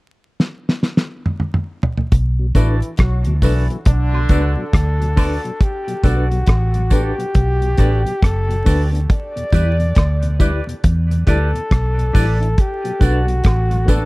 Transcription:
0.40 snare
0.69 snare
0.83 snare
0.97 snare
1.26 mid tom
1.40 mid tom
1.54 mid tom
1.83 floor tom
1.97 floor tom
2.12 B1, kick, closed hi-hat
2.39 B2 F#3
2.55 A1 E3 A3 B3 D4 E4 F#4 A4 B4 D5, kick, closed hi-hat, tambourine
2.82 closed hi-hat
2.97 B1 F#3 F#4, kick, cross-stick, closed hi-hat
3.25 D2 B2 F#3, closed hi-hat
3.42 B1 E3 A3 B3 D4 E4 F#4 A4 B4 D5, kick, open hi-hat, tambourine
3.70 B2 F#3 A4 B4, closed hi-hat
3.85 B1 D3 D4, kick, closed hi-hat
4.13 B2 F#3, high woodblock
4.29 C#2 A3 B3 D4 F#4 A4 B4 D5, kick, closed hi-hat, tambourine
4.33 A4
4.56 B2 F#3
4.73 D2, kick, cross-stick, closed hi-hat
5.00 B2 F#3, closed hi-hat
5.16 A3 B3 D4 F#4 A4 B4 D5, kick, open hi-hat, tambourine, high woodblock
5.44 B2 F#3, closed hi-hat
5.61 G4, kick, closed hi-hat
5.87 B2 F#3, closed hi-hat
6.03 B1 A3 B3 D4 F#4 A4 B4 D5, kick, closed hi-hat, tambourine
6.31 B2 F#3, closed hi-hat
6.46 A1, kick, cross-stick, closed hi-hat, high woodblock
6.74 B2 F#3, closed hi-hat
6.90 A3 B3 D4 F#4 G4 A4 B4 D5, kick, closed hi-hat, tambourine
7.18 B2 F#3 A4 B4, muted clean electric guitar stroke, closed hi-hat
7.35 B1, kick, closed hi-hat
7.61 B2 F#3, closed hi-hat
7.77 A1 A3 B3 D4 F#4 A4 B4 D5, kick, cross-stick, closed hi-hat, tambourine
8.05 B2 F#3, closed hi-hat
8.22 F#1 A4, kick, cross-stick, closed hi-hat
8.48 B2 F#3, closed hi-hat
8.64 D2 A3 B3 D4 F#4 A4 B4 D5, kick, open hi-hat, tambourine
8.92 B3 D4, muted clean electric guitar stroke, closed hi-hat
9.10 D5, kick, closed hi-hat
9.36 E2 B2, closed hi-hat
9.52 E2 G3 D4 E4 G4 B4 D5, kick, closed hi-hat, tambourine
9.79 E2 B2, closed hi-hat
9.95 D2, kick, cross-stick, closed hi-hat, high woodblock
10.23 E2 B2, closed hi-hat
10.39 G3 D4 E4 G4 B4 D5, kick, closed hi-hat, tambourine
10.67 E2 B2 G4 D5, muted clean electric guitar stroke, closed hi-hat
10.84 E2, kick, closed hi-hat
11.10 E2 B2, muted clean electric guitar stroke, closed hi-hat
11.26 D2 G3 D4 E4 G4 A4 B4 D5, kick, cross-stick, closed hi-hat, tambourine
11.53 E2 B2, closed hi-hat
11.71 B1, kick, cross-stick, closed hi-hat
11.98 E2 B2, closed hi-hat
12.13 A1 G3 D4 E4 G4 B4 D5, kick, open hi-hat, tambourine
12.40 D4 E4, closed hi-hat
12.58 G4, kick, closed hi-hat
12.84 B2 F#3, closed hi-hat
12.99 B1 A3 B3 D4 F#4 A4 B4 D5, kick, closed hi-hat, tambourine
13.04 F#4
13.26 B2 F#3, closed hi-hat
13.44 A1, kick, cross-stick, closed hi-hat, high woodblock
13.70 B2 F#3, closed hi-hat
13.85 A3 B3 D4 F#4 A4 B4, kick, closed hi-hat, tambourine
13.90 A4 D5

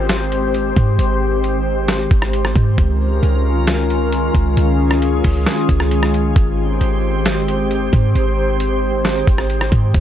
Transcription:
Already playing: G#1 D#3 G#3 C4 G4 C5
0.09 snare, closed hi-hat
0.32 closed hi-hat
0.54 closed hi-hat
0.77 G#2, kick, closed hi-hat
0.99 G#1, closed hi-hat
1.44 closed hi-hat
1.88 snare, closed hi-hat
2.11 G#1, kick, closed hi-hat
2.22 cross-stick
2.33 closed hi-hat
2.45 cross-stick
2.56 G#2, kick, closed hi-hat
2.78 C#2 C#4 F4 A#4, kick, closed hi-hat
3.23 C#2, closed hi-hat
3.67 snare, closed hi-hat
3.90 closed hi-hat
4.12 closed hi-hat
4.35 C#2, kick, closed hi-hat
4.57 C#2 G#4, closed hi-hat
4.91 cross-stick
5.02 closed hi-hat
5.24 C#2, kick, open hi-hat
5.46 snare, closed hi-hat
5.69 C#2, kick, closed hi-hat
5.80 cross-stick
5.91 closed hi-hat
6.03 cross-stick
6.14 closed hi-hat
6.36 G#1 C4 G4 C5, kick, closed hi-hat
6.81 G#1, closed hi-hat
7.25 snare, closed hi-hat
7.48 closed hi-hat
7.71 closed hi-hat
7.93 G#2, kick, closed hi-hat
8.15 G#1, closed hi-hat
8.60 closed hi-hat
9.05 snare, closed hi-hat
9.27 G#1, kick, closed hi-hat
9.38 cross-stick
9.50 closed hi-hat
9.61 cross-stick
9.72 G#2, kick, closed hi-hat
9.94 C#2 D#3 G#3 C#4 F4 A#4, kick, closed hi-hat

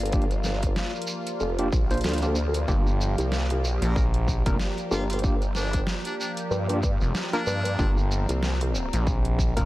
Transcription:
Already playing: G1 F3 A#3 F4 G4 D5 F5
0.06 closed hi-hat
0.12 A#3 D4 F4 G4, kick, closed hi-hat, shekere
0.22 closed hi-hat
0.31 cross-stick, closed hi-hat, shekere
0.44 snare, shekere
0.63 kick, cross-stick, closed hi-hat, shekere
0.76 snare, shekere
0.95 shekere
1.02 closed hi-hat
1.07 shekere
1.27 closed hi-hat, shekere
1.40 F1, shekere
1.59 A#3 D4 F4 G4, closed hi-hat
1.72 A#1, kick, shekere
1.91 A#3 D4 F4 C5, closed hi-hat, shekere
1.94 closed hi-hat
1.97 closed hi-hat
2.01 D2, snare, closed hi-hat, shekere
2.04 closed hi-hat
2.09 closed hi-hat
2.14 closed hi-hat
2.18 closed hi-hat
2.22 A#3 D4 F4 G4, closed hi-hat, shekere
2.35 shekere
2.54 cross-stick, closed hi-hat, shekere
2.68 G1 A#3 D4 F4 G4, kick, shekere
2.86 cross-stick, shekere
3.01 shekere
3.18 C2, cross-stick, closed hi-hat, shekere
3.32 snare, shekere
3.50 closed hi-hat
3.61 B1, shekere
3.82 A#1 A#4, closed hi-hat, shekere
3.96 kick, shekere
4.14 closed hi-hat
4.28 kick, shekere
4.33 A#5
4.46 F1 A#3 D4 F4 A#4, kick, closed hi-hat, shekere
4.60 snare, shekere
4.78 closed hi-hat, shekere
4.91 G1 A#3 D4 F4 G4, shekere
5.10 F4, closed hi-hat, shekere
5.13 closed hi-hat
5.19 closed hi-hat
5.23 A#3 D4 F4 G4, kick, shekere
5.42 cross-stick, closed hi-hat, shekere
5.55 D4, snare, shekere
5.73 kick, cross-stick, closed hi-hat, shekere
5.87 snare, shekere
6.05 D4, closed hi-hat, shekere
6.20 D4, shekere
6.37 closed hi-hat, shekere
6.51 G2, shekere
6.69 A#3 D4 F4 G4, closed hi-hat
6.83 kick, shekere
7.01 F1, shekere
7.15 snare, shekere
7.33 F3 A#3 D4 F4 A#4, closed hi-hat, shekere
7.47 G2, shekere
7.65 cross-stick, closed hi-hat, shekere
7.79 G1 A#3 C4 D4 F4 G4, kick, shekere
7.97 cross-stick, shekere
8.11 shekere
8.29 C2, cross-stick, closed hi-hat, shekere
8.43 snare, shekere
8.61 closed hi-hat
8.75 shekere
8.93 A#1, closed hi-hat, shekere
9.07 kick, shekere
9.25 closed hi-hat
9.39 kick, shekere
9.57 F1 A#3 D4 F4 A#4, kick, closed hi-hat, shekere

